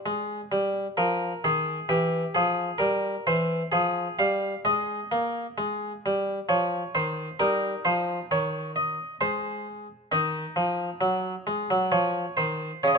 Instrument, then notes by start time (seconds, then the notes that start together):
harpsichord
Already playing: C5
0.06 G#3
0.52 G3
0.97 F3 A#4
1.44 D#3 G#4
1.89 E3 G4
2.35 F3 G#4
2.78 G3 A#4
3.27 E3 C5
3.72 F3 G#4
4.19 G3 F5
4.65 G#3 D#5
5.12 A#3
5.58 G#3
6.06 G3
6.49 F3 C#5
6.95 D#3 C5
7.39 G3 D#4 A#4
7.85 F3 C5
8.31 D#3 C#5
8.76 D#5
9.21 G#3 C5
10.12 D#3 D#4 D#5
10.56 F3
11.01 F#3
11.47 G#3
11.70 F#3
11.92 F3 C#5
12.37 D#3 C5
12.83 C#3 C#5
12.88 D#5